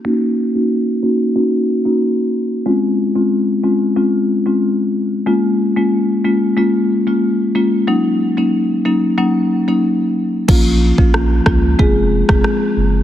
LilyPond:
<<
  \new Staff \with { instrumentName = "Marimba" } { \time 4/4 \key bes \minor \tempo 4 = 92 <bes des' ees' ges'>8. <bes des' ees' ges'>16 r8 <bes des' ees' ges'>16 r16 <bes des' ees' ges'>8. <bes des' ees' ges'>16 r4 | <aes c' des' f'>8. <aes c' des' f'>16 r8 <aes c' des' f'>16 r16 <aes c' des' f'>8. <aes c' des' f'>16 r4 | <aes bes des' f'>8. <aes bes des' f'>16 r8 <aes bes des' f'>16 r16 <aes bes des' f'>8. <aes bes des' f'>8. <aes bes des' f'>8 | <ges bes des' ees'>8. <ges bes des' ees'>16 r8 <ges bes des' ees'>16 r16 <ges bes des' ees'>8. <ges bes des' ees'>16 r4 |
<f bes des' f'>8. <f bes des' f'>16 r8 <f bes des' f'>16 r16 <aes c' f' aes'>8. <aes c' f' aes'>16 r4 | }
  \new Staff \with { instrumentName = "Sub bass" } { \clef bass \time 4/4 \key bes \minor r1 | r1 | r1 | r1 |
bes,,8. bes,,8. des,8 f,,8. f,,16 r8 ges,,8 | }
  \new DrumStaff \with { instrumentName = "Drums" } \drummode { \time 4/4 r4 r4 r4 r4 | r4 r4 r4 r4 | r4 r4 r4 r4 | r4 r4 r4 r4 |
<cymc bd>8. bd16 ss8 <bd ss>8 bd8. <bd ss>16 ss4 | }
>>